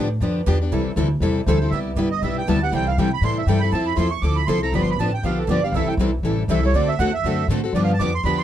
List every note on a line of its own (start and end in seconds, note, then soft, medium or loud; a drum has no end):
0.00 0.20 A2 medium
0.20 0.46 F2 medium
0.20 0.40 D3 medium
0.20 0.40 F3 medium
0.20 0.41 B3 medium
0.20 0.41 D4 medium
0.20 0.41 G4 medium
0.47 0.71 E2 medium
0.47 0.57 D3 medium
0.47 0.58 F3 medium
0.47 0.57 B3 medium
0.47 0.58 D4 loud
0.47 0.58 G4 loud
0.62 0.73 B3 medium
0.62 0.72 D4 medium
0.62 0.72 G4 medium
0.72 0.85 C2 medium
0.72 0.90 C3 medium
0.72 0.91 E3 medium
0.72 0.91 G3 medium
0.72 0.91 C4 medium
0.72 0.91 E4 medium
0.72 0.91 A4 medium
0.86 muted upright bass stroke soft
0.96 1.20 D2 medium
0.96 1.07 C3 medium
0.96 1.07 E3 medium
0.96 1.07 G3 medium
0.96 1.07 C4 medium
0.96 1.07 E4 loud
0.96 1.07 A4 loud
1.20 1.46 E2 medium
1.20 1.40 C3 medium
1.20 1.40 E3 medium
1.20 1.40 G3 medium
1.20 1.41 C4 medium
1.20 1.41 E4 medium
1.20 1.41 A4 medium
1.46 1.70 D2 medium
1.46 1.58 C3 medium
1.46 1.58 E3 loud
1.46 1.58 G3 medium
1.46 1.58 C4 loud
1.46 1.58 E4 medium
1.46 1.58 A4 medium
1.46 1.71 C5 medium
1.62 1.72 G3 soft
1.62 1.73 C4 medium
1.62 1.72 E4 medium
1.62 1.72 A4 medium
1.70 1.95 C2 medium
1.70 1.91 C3 medium
1.70 1.91 G3 medium
1.70 1.91 B3 medium
1.70 1.91 E4 medium
1.70 1.80 E5 medium
1.74 1.92 G4 medium
1.96 2.21 G1 medium
1.96 2.08 C3 medium
1.96 2.08 G3 medium
1.96 2.08 B3 medium
1.96 2.08 E4 medium
1.96 2.08 G4 medium
2.11 2.22 D#5 medium
2.22 2.46 B1 medium
2.22 2.41 C3 medium
2.22 2.42 G3 medium
2.22 2.42 B3 medium
2.22 2.42 E4 medium
2.22 2.42 G4 medium
2.22 2.37 E5 medium
2.38 2.48 G5 medium
2.48 2.71 D2 medium
2.48 2.58 C3 medium
2.48 2.59 G3 medium
2.48 2.59 B3 medium
2.48 2.59 E4 medium
2.48 2.59 G4 loud
2.48 2.62 A5 medium
2.63 2.74 B3 soft
2.63 2.73 E4 medium
2.63 2.73 G4 medium
2.63 2.73 F#5 medium
2.72 2.97 C2 medium
2.72 2.91 C3 medium
2.72 2.92 E3 medium
2.72 2.92 G3 medium
2.72 2.92 C4 medium
2.72 2.92 E4 medium
2.72 2.92 A4 medium
2.72 2.88 G5 loud
2.88 2.98 F5 medium
2.98 3.21 C3 medium
2.98 3.08 C3 medium
2.98 3.09 E3 medium
2.98 3.09 G3 medium
2.98 3.09 C4 medium
2.98 3.09 E4 medium
2.98 3.09 A4 medium
2.98 3.12 G5 medium
3.14 3.23 B5 medium
3.21 3.46 A2 medium
3.21 3.41 C3 medium
3.21 3.41 E3 medium
3.21 3.41 G3 medium
3.21 3.42 C4 medium
3.21 3.41 E4 medium
3.21 3.42 A4 medium
3.21 3.38 C6 loud
3.38 3.48 E5 medium
3.46 3.71 G2 medium
3.46 3.59 C3 medium
3.46 3.58 E3 medium
3.46 3.59 G3 medium
3.46 3.59 C4 medium
3.46 3.59 E4 medium
3.46 3.59 A4 medium
3.46 3.62 G5 medium
3.60 3.73 A4 medium
3.60 3.72 B5 loud
3.64 3.73 G3 medium
3.64 3.74 C4 medium
3.64 3.74 E4 medium
3.72 3.96 F2 medium
3.72 3.92 F3 medium
3.72 3.92 C4 medium
3.72 3.92 E4 medium
3.72 3.92 A4 medium
3.72 3.86 A5 medium
3.86 3.97 B5 medium
3.96 4.21 E2 medium
3.96 4.08 F3 medium
3.96 4.08 C4 medium
3.96 4.08 E4 medium
3.96 4.08 A4 medium
3.96 4.11 C6 medium
4.11 4.22 C#6 loud
4.22 4.47 D2 medium
4.22 4.41 F3 medium
4.22 4.42 C4 medium
4.22 4.42 E4 medium
4.22 4.42 A4 medium
4.22 4.36 D6 medium
4.36 4.47 B5 medium
4.47 4.72 C2 medium
4.47 4.58 F3 medium
4.47 4.59 C4 medium
4.47 4.59 E4 medium
4.47 4.59 A4 medium
4.47 4.61 C6 loud
4.63 4.74 C4 soft
4.63 4.74 E4 medium
4.63 4.73 A4 medium
4.63 4.73 A#5 medium
4.72 4.96 G1 medium
4.72 4.92 D3 medium
4.72 4.93 F3 medium
4.72 4.92 B3 medium
4.72 4.93 D4 medium
4.72 4.93 G4 medium
4.72 4.82 B5 medium
4.82 4.90 C6 medium
4.91 4.99 B5 medium
4.96 5.22 A1 medium
4.96 5.13 A5 medium
5.01 5.10 D3 medium
5.01 5.10 F3 medium
5.01 5.10 B3 medium
5.01 5.10 D4 medium
5.01 5.10 G4 medium
5.14 5.24 G5 medium
5.23 5.47 B1 medium
5.23 5.43 D3 medium
5.23 5.43 F3 medium
5.23 5.43 B3 medium
5.23 5.43 D4 medium
5.23 5.43 G4 medium
5.23 5.38 F5 medium
5.38 5.49 A4 medium
5.47 5.72 G1 medium
5.47 5.60 D3 medium
5.47 5.60 F3 medium
5.47 5.60 B3 medium
5.47 5.60 D4 medium
5.47 5.63 D5 medium
5.52 5.61 G4 loud
5.64 5.75 B3 soft
5.64 5.75 D4 medium
5.64 5.74 G4 medium
5.64 5.74 F5 loud
5.72 5.86 C2 medium
5.72 5.93 C3 medium
5.72 5.88 E5 medium
5.76 5.93 E3 medium
5.76 5.93 G3 medium
5.76 5.93 C4 medium
5.76 5.94 E4 medium
5.76 5.94 A4 medium
5.86 5.95 G5 loud
5.86 muted upright bass stroke soft
5.97 6.23 B1 medium
5.97 6.09 C3 medium
5.97 6.10 E3 medium
5.97 6.10 G3 medium
5.97 6.10 C4 medium
5.97 6.10 E4 medium
6.01 6.10 A4 medium
6.23 6.47 A1 medium
6.23 6.42 C3 medium
6.23 6.43 E3 medium
6.23 6.43 G3 medium
6.23 6.43 C4 medium
6.23 6.42 E4 medium
6.23 6.43 A4 medium
6.48 6.73 C2 medium
6.48 6.60 C3 medium
6.48 6.60 E3 medium
6.48 6.60 G3 medium
6.48 6.60 C4 medium
6.48 6.60 E4 loud
6.48 6.60 A4 medium
6.48 6.64 E5 medium
6.63 6.75 G3 medium
6.63 6.75 C4 medium
6.63 6.74 E4 medium
6.63 6.74 A4 medium
6.63 6.75 C#5 medium
6.74 6.98 D2 medium
6.74 6.93 D3 medium
6.74 6.93 A3 medium
6.74 6.93 C4 medium
6.74 6.93 F#4 medium
6.74 6.93 A4 medium
6.74 6.88 D5 medium
6.88 6.99 E5 loud
6.99 7.23 E2 loud
6.99 7.10 D3 medium
6.99 7.11 A3 medium
6.99 7.11 C4 medium
6.99 7.11 F#4 medium
6.99 7.11 A4 medium
6.99 7.13 F#5 medium
7.14 7.47 E5 medium
7.24 7.47 F#2 medium
7.24 7.43 D3 medium
7.24 7.43 A3 medium
7.24 7.44 C4 medium
7.24 7.44 F#4 medium
7.24 7.44 A4 medium
7.48 7.72 A2 medium
7.48 7.60 D3 medium
7.48 7.60 A3 loud
7.48 7.60 C4 loud
7.48 7.61 F#4 medium
7.48 7.60 A4 loud
7.64 7.75 C4 soft
7.64 7.75 F#4 medium
7.64 7.74 A4 medium
7.73 7.98 G2 medium
7.73 7.93 D3 medium
7.73 7.93 F3 medium
7.73 7.93 B3 medium
7.73 7.93 D4 medium
7.73 7.94 G4 medium
7.73 7.83 D5 medium
7.84 7.92 F5 medium
7.94 8.01 A5 medium
7.99 8.23 F2 loud
7.99 8.10 D3 medium
7.99 8.11 F3 medium
7.99 8.11 B3 medium
7.99 8.11 D4 loud
7.99 8.11 G4 medium
7.99 8.13 D6 loud
8.15 8.25 C6 loud
8.24 8.44 E2 medium
8.24 8.43 D3 medium
8.24 8.43 F3 medium
8.24 8.44 B3 medium
8.24 8.44 D4 medium
8.24 8.44 G4 medium
8.24 8.39 B5 medium
8.38 8.44 C6 loud